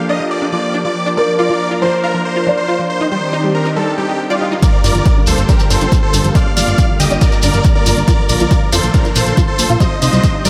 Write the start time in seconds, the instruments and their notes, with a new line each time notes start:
Already playing: analog synth pad F3 A#3 D4 G4, felt piano A4
0.09 synth pluck D4, supersaw synth D#5
0.20 synth pluck F3
0.31 supersaw synth D5
0.42 synth pluck D4
0.52 synth pluck F3, supersaw synth D5
0.74 synth pluck D4
0.85 synth pluck F3, supersaw synth D5
1.06 synth pluck D4
1.17 synth pluck F3, analog synth pad D4 A#4, felt piano A#4, supersaw synth D5
1.39 synth pluck F4, supersaw synth D5
1.50 synth pluck F3
1.71 synth pluck F4
1.82 synth pluck F3, felt piano C5, supersaw synth C5
2.04 synth pluck F4, supersaw synth A#4
2.14 synth pluck F3
2.25 supersaw synth C5
2.36 synth pluck F4
2.47 synth pluck F3, felt piano D5
2.57 supersaw synth C5
2.68 synth pluck F4
2.79 synth pluck F3
2.90 analog synth pad D#3 C4 D4 G4, supersaw synth C5
3.01 synth pluck D#4
3.11 synth pluck G3, supersaw synth C5
3.33 synth pluck D#4
3.44 synth pluck G3
3.55 supersaw synth A#4
3.65 synth pluck D#4
3.76 synth pluck G3, supersaw synth A4, swell
3.98 synth pluck G3, supersaw synth G4
4.09 synth pluck D#4
4.30 supersaw synth F4, synth pluck D5
4.41 synth pluck D#4
4.52 synth pluck D#4
4.62 analog synth pad D3 G3 A#3 F4, synth pluck F3, supersaw synth A#4 D5, kick, closed hi-hat, shekere
4.84 analog synth bass G1, synth pluck D4, supersaw synth A#4 D5, open hi-hat, shekere
4.95 analog synth bass G1, synth pluck F3, closed hi-hat, shekere
5.05 kick, closed hi-hat, shekere
5.17 synth pluck D4
5.27 analog synth bass D2, synth pluck F3, supersaw synth A4 C5, open hi-hat, shekere
5.37 analog synth bass G1, closed hi-hat, shekere
5.49 synth pluck D4, supersaw synth G4 A#4, kick, closed hi-hat, shekere
5.59 synth pluck F3, closed hi-hat, shekere
5.70 analog synth bass G1, supersaw synth A4 C5, open hi-hat, shekere
5.81 analog synth bass G1, synth pluck D4, closed hi-hat, shekere
5.92 synth pluck F3, kick, closed hi-hat, shekere
6.03 supersaw synth A4 C5
6.14 analog synth bass G1, synth pluck D4, open hi-hat, shekere
6.24 analog synth bass G1, synth pluck F3, closed hi-hat, shekere
6.35 supersaw synth D5 F5, kick, closed hi-hat, shekere
6.46 synth pluck D4
6.57 analog synth bass G1, synth pluck F3, supersaw synth D5 F5, open hi-hat, shekere
6.67 analog synth bass G1, closed hi-hat, shekere
6.78 synth pluck D4, kick, closed hi-hat, shekere
6.89 synth pluck F3
7.00 analog synth bass D2, supersaw synth G4 D#5, open hi-hat, shekere
7.11 analog synth bass G1, synth pluck D4, closed hi-hat, shekere
7.21 synth pluck F3, supersaw synth A#4 D5, kick, closed hi-hat, shekere
7.32 closed hi-hat, shekere
7.42 analog synth bass G1, synth pluck D4, supersaw synth A#4 D5, open hi-hat, shekere
7.53 analog synth bass G1, synth pluck F3, closed hi-hat, shekere
7.64 kick, closed hi-hat, shekere
7.75 synth pluck D4, supersaw synth A#4 D5
7.86 analog synth bass G1, synth pluck F3, open hi-hat, shekere
7.97 analog synth bass G1, closed hi-hat, shekere
8.08 analog synth pad F3, synth pluck F4, supersaw synth A#4 D5, kick, closed hi-hat, shekere
8.19 synth pluck F3
8.29 analog synth bass A#1, supersaw synth A#4 D5, open hi-hat, shekere
8.40 analog synth bass A#1, synth pluck F4, closed hi-hat, shekere
8.51 synth pluck F3, kick, closed hi-hat, shekere
8.72 analog synth bass F2, synth pluck F4, supersaw synth A4 C5, open hi-hat, shekere
8.83 analog synth bass A#1, synth pluck F3, closed hi-hat, shekere
8.94 supersaw synth D4 A#4, kick, closed hi-hat, shekere
9.05 synth pluck F4, closed hi-hat, shekere
9.15 analog synth bass A#1, synth pluck F3, supersaw synth A4 C5, open hi-hat, shekere
9.26 analog synth bass A#1, closed hi-hat, shekere
9.37 synth pluck F4, kick, closed hi-hat, shekere
9.48 synth pluck F3, supersaw synth A4 C5
9.59 analog synth bass A#1, open hi-hat, shekere
9.70 analog synth bass A#1, synth pluck F4, closed hi-hat, shekere
9.80 synth pluck G3, analog synth pad G3 C4 D4 D#4, supersaw synth C5 D#5, kick, closed hi-hat, shekere
10.02 analog synth bass C2, synth pluck D#4, supersaw synth C5 D#5, open hi-hat, shekere
10.13 analog synth bass C2, synth pluck G3, closed hi-hat, shekere
10.24 kick, closed hi-hat, shekere
10.34 synth pluck D#4
10.45 analog synth bass G1, synth pluck G3, supersaw synth A#4 D5, open hi-hat, shekere